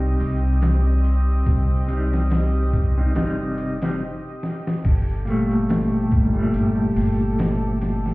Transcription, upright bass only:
0.00 0.16 C2 medium
0.21 1.44 C2 medium
1.47 2.70 C2 loud
2.74 3.17 C2 loud
3.17 4.01 G1 loud
4.85 6.08 G1 medium
6.12 6.50 G1 loud
6.54 6.92 G1 medium
6.97 8.14 G1 medium

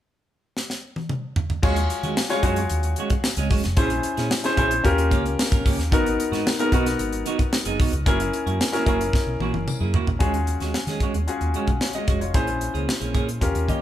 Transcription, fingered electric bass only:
1.63 1.86 D#2 loud
2.03 2.15 D#3 medium
2.43 2.66 F#2 medium
2.70 2.93 D#2 medium
3.37 3.49 C#2 medium
3.51 3.62 F#1 medium
3.64 3.76 F1 medium
3.77 4.00 A#1 loud
4.18 4.29 A#2 medium
4.57 4.81 A#1 medium
4.85 5.11 D#2 medium
5.11 5.34 C#2 medium
5.52 5.63 A#1 medium
5.66 5.78 C#2 medium
5.78 5.90 D#2 medium
5.92 6.15 G#1 loud
6.32 6.43 G#2 loud
6.72 6.95 B1 medium
6.99 7.22 G#1 medium
7.66 7.77 F#1 medium
7.79 7.91 B1 medium
7.92 8.04 C#2 medium
8.06 8.29 F#1 loud
8.46 8.58 F#2 medium
8.86 9.09 F#1 medium
9.27 9.38 B1 medium
9.40 9.51 A#1 medium
9.53 9.65 F#1 medium
9.80 9.92 F#2 medium
10.06 10.18 A#1 medium
10.20 10.55 D#2 loud
10.60 10.72 D#2 medium
10.74 muted fingered electric bass stroke soft
10.87 10.99 D#3 medium
11.14 11.26 D#2 medium
11.41 11.52 D#2 medium
11.67 11.79 B1 medium
12.08 12.31 F1 medium
12.34 12.69 A#1 medium
12.74 12.86 C#2 medium
13.01 13.13 A#1 medium
13.14 13.38 A#2 medium
13.41 13.53 D#2 loud
13.54 13.66 D#2 medium
13.68 13.82 D#3 medium

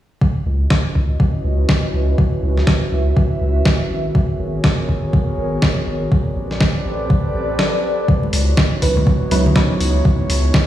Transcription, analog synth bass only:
0.46 0.66 C#2 medium
0.95 1.15 C#2 medium
1.44 1.65 C#2 medium
1.94 2.14 C#2 medium
2.43 2.63 C#2 medium
2.92 3.12 C#2 medium
3.41 3.61 C#2 medium
3.90 4.11 G#1 medium
4.40 4.60 G#1 loud
4.89 5.09 G#1 medium
5.38 5.58 G#1 medium
5.87 6.07 G#1 medium
6.36 6.56 A1 loud
6.85 7.06 A1 medium
7.35 7.55 A1 medium
8.33 8.53 C#2 loud
8.82 9.02 C#2 medium
9.31 9.52 C#2 loud
9.81 10.01 C#2 medium
10.30 10.50 C#2 loud

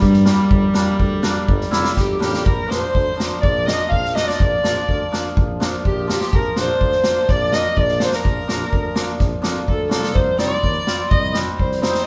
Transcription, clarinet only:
0.00 1.98 G3 medium
1.99 2.19 G4 medium
2.20 2.46 G4 medium
2.44 2.69 A#4 medium
2.67 3.24 C5 medium
3.41 3.69 D5 medium
3.67 3.88 D#5 medium
3.89 4.17 F5 loud
4.15 4.27 D#5 medium
4.27 5.20 D5 medium
5.86 6.08 G4 medium
6.13 6.38 G4 medium
6.36 6.63 A#4 medium
6.61 7.33 C5 medium
7.31 7.57 D5 medium
7.55 7.82 D#5 loud
7.81 8.05 D5 medium
8.04 8.17 C5 medium
8.16 9.10 A#4 medium
9.72 9.91 A4 medium
9.92 10.16 A4 medium
10.14 10.39 C5 medium
10.40 11.13 D5 medium
11.11 11.36 D#5 medium
11.60 11.81 C5 medium
11.81 12.05 C5 medium

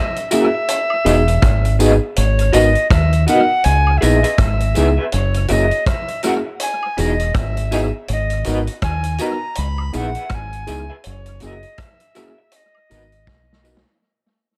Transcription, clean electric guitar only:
0.31 0.43 F#4 medium
0.31 0.43 A#4 medium
0.31 0.43 E5 loud
0.55 muted clean electric guitar stroke soft
1.05 1.17 G#4 medium
1.05 1.17 B4 loud
1.05 1.17 D#5 medium
1.28 muted clean electric guitar stroke soft
1.79 1.91 G#4 medium
1.79 1.91 B4 medium
1.79 1.91 D#5 medium
2.53 2.65 F#4 medium
2.53 2.65 B4 loud
2.53 2.65 D#5 loud
3.27 3.39 F#4 medium
3.27 3.39 B4 medium
3.27 3.39 D#5 loud
4.01 4.13 G#4 medium
4.01 4.13 B4 medium
4.01 4.13 E5 loud
4.23 4.30 G#4 medium
4.23 4.30 B4 medium
4.23 4.30 E5 medium
4.75 4.87 G#4 medium
4.75 4.87 B4 medium
4.75 4.87 E5 medium
4.97 5.04 G#4 soft
4.97 5.04 B4 medium
4.97 5.03 E5 medium
5.49 5.61 F#4 medium
5.49 5.61 A#4 loud
5.49 5.61 E5 loud
6.23 6.35 F#4 medium
6.23 6.35 A#4 medium
6.23 6.36 E5 medium
6.45 muted clean electric guitar stroke soft
6.97 7.09 E4 medium
6.97 7.09 G#4 medium
6.97 7.10 D#5 loud
7.20 muted clean electric guitar stroke soft
7.71 7.83 E4 medium
7.71 7.83 G#4 medium
7.71 7.84 D#5 medium
8.45 8.57 F#4 loud
8.45 8.57 B4 loud
8.45 8.58 D#5 loud
9.19 9.31 F#4 medium
9.19 9.32 B4 medium
9.19 9.32 D#5 loud
9.93 10.05 G#4 medium
9.93 10.05 B4 loud
9.93 10.06 E5 loud
10.16 10.23 G#4 medium
10.16 10.22 B4 medium
10.16 10.22 E5 medium
10.68 10.79 G#4 medium
10.68 10.80 B4 medium
10.68 10.80 E5 medium
10.90 10.96 G#4 soft
10.90 10.96 B4 medium
10.90 10.96 E5 medium
11.41 11.53 F#4 medium
11.41 11.53 A#4 medium
11.41 11.54 E5 medium
12.15 12.27 F#4 loud
12.15 12.28 A#4 loud
12.15 12.28 E5 loud
12.38 muted clean electric guitar stroke medium
12.90 13.01 F#4 medium
12.90 13.02 B4 medium
12.90 13.02 D#5 medium
13.13 muted clean electric guitar stroke medium
13.64 13.75 F#4 medium
13.64 13.76 B4 loud
13.64 13.76 D#5 medium

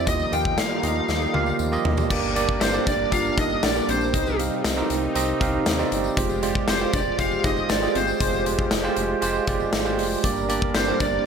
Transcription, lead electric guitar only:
0.08 0.33 D#5 loud
0.33 0.59 G5 loud
0.58 1.56 F5 medium
2.62 2.85 C5 medium
2.87 3.12 D5 medium
3.13 3.38 F5 loud
3.38 3.63 D#5 medium
3.64 3.89 D5 medium
3.89 4.36 C5 medium
6.69 6.95 C5 medium
6.94 7.19 D5 loud
7.19 7.44 F5 loud
7.45 7.70 D#5 medium
7.70 7.96 D5 medium
7.95 8.43 C5 medium
10.75 11.01 C5 medium
11.01 11.26 D5 medium

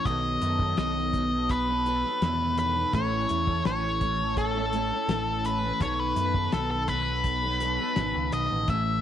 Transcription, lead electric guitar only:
0.05 0.77 D#5 loud
0.78 1.52 D#5 medium
1.51 2.58 B4 medium
2.59 2.94 B4 medium
2.95 3.62 C#5 medium
3.66 4.34 C#5 medium
4.38 5.48 A4 medium
5.46 5.82 B4 medium
5.82 6.00 C#5 loud
6.00 6.53 B4 medium
6.54 6.69 A4 medium
6.71 6.88 A4 medium
6.88 8.36 B4 medium
8.33 8.69 D#5 medium
8.70 9.01 E5 loud

